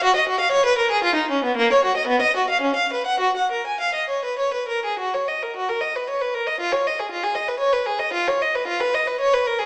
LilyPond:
\new Staff \with { instrumentName = "Violin" } { \time 3/4 \key ees \minor \tempo 4 = 114 ges'16 ees''16 ges'16 f''16 des''16 ces''16 bes'16 aes'16 f'16 ees'16 des'16 ces'16 | \key fis \major ais16 cis''16 fis'16 dis''16 b16 dis''16 fis'16 eis''16 cis'16 eis''16 b'16 fis''16 | fis'16 fis''16 ais'16 gis''16 eis''16 dis''16 cis''16 b'16 cis''16 b'16 ais'16 gis'16 | fis'16 cis''16 dis''16 ais'16 fis'16 ais'16 dis''16 b'16 cis''16 b'16 ais'16 dis''16 |
eis'16 cis''16 dis''16 gis'16 eis'16 gis'16 dis''16 b'16 cis''16 b'16 gis'16 dis''16 | eis'16 cis''16 dis''16 b'16 eis'16 b'16 dis''16 b'16 cis''16 b'16 ais'16 gis'16 | }